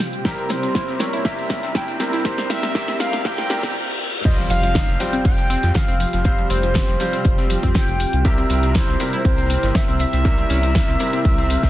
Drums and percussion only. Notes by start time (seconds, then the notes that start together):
0.00 snare, closed hi-hat, open hi-hat, cabasa
0.13 closed hi-hat, cabasa
0.25 kick, snare, closed hi-hat, cabasa
0.38 closed hi-hat
0.49 snare, closed hi-hat, open hi-hat, cabasa
0.63 closed hi-hat, cabasa
0.75 kick, snare, closed hi-hat, cabasa
0.88 snare, closed hi-hat
0.99 snare, closed hi-hat, open hi-hat, cabasa
1.13 closed hi-hat, cabasa
1.25 kick, snare, closed hi-hat, open hi-hat, cabasa
1.38 closed hi-hat
1.50 kick, snare, closed hi-hat, open hi-hat, cabasa
1.63 snare, closed hi-hat, cabasa
1.75 kick, snare, closed hi-hat, cabasa
1.88 closed hi-hat
2.00 snare, closed hi-hat, open hi-hat, cabasa
2.13 snare, closed hi-hat, cabasa
2.25 kick, snare, closed hi-hat, cabasa
2.38 snare, closed hi-hat
2.50 snare, closed hi-hat, open hi-hat, cabasa
2.63 snare, closed hi-hat, cabasa
2.75 kick, snare, closed hi-hat, cabasa
2.88 snare, closed hi-hat
3.00 snare, closed hi-hat, open hi-hat, cabasa
3.13 snare, closed hi-hat, cabasa
3.24 kick, snare, closed hi-hat, cabasa
3.38 snare, closed hi-hat
3.50 snare, closed hi-hat, open hi-hat, cabasa
3.63 kick, snare, closed hi-hat, cabasa
4.25 kick, closed hi-hat, crash
4.38 closed hi-hat
4.50 snare, closed hi-hat, open hi-hat
4.63 closed hi-hat
4.75 kick, snare, closed hi-hat
4.88 snare, closed hi-hat
5.00 closed hi-hat, open hi-hat
5.13 closed hi-hat
5.25 kick, closed hi-hat, open hi-hat
5.38 closed hi-hat
5.50 closed hi-hat, open hi-hat
5.63 snare, closed hi-hat
5.74 kick, snare, closed hi-hat
5.88 closed hi-hat
6.00 closed hi-hat, open hi-hat
6.13 snare, closed hi-hat
6.25 kick, closed hi-hat
6.38 closed hi-hat
6.50 closed hi-hat, open hi-hat
6.63 closed hi-hat
6.74 kick, snare, closed hi-hat
6.88 snare, closed hi-hat
7.00 closed hi-hat, open hi-hat
7.13 closed hi-hat
7.25 kick, closed hi-hat
7.38 snare, closed hi-hat
7.50 closed hi-hat, open hi-hat
7.63 kick, closed hi-hat
7.74 kick, snare, closed hi-hat
7.88 closed hi-hat
8.00 closed hi-hat, open hi-hat
8.13 closed hi-hat
8.25 kick, closed hi-hat
8.38 closed hi-hat
8.50 snare, closed hi-hat, open hi-hat
8.63 closed hi-hat
8.74 kick, snare, closed hi-hat
8.88 snare, closed hi-hat
9.00 closed hi-hat, open hi-hat
9.13 closed hi-hat
9.25 kick, closed hi-hat, open hi-hat
9.38 closed hi-hat
9.50 closed hi-hat, open hi-hat
9.63 snare, closed hi-hat
9.75 kick, snare, closed hi-hat
9.88 closed hi-hat
9.99 closed hi-hat, open hi-hat
10.13 snare, closed hi-hat
10.25 kick, closed hi-hat
10.38 closed hi-hat
10.50 closed hi-hat, open hi-hat
10.63 closed hi-hat
10.75 kick, snare, closed hi-hat
10.88 snare, closed hi-hat
10.99 closed hi-hat, open hi-hat
11.13 closed hi-hat
11.25 kick, closed hi-hat, open hi-hat
11.38 closed hi-hat
11.50 closed hi-hat, open hi-hat
11.63 kick, snare, closed hi-hat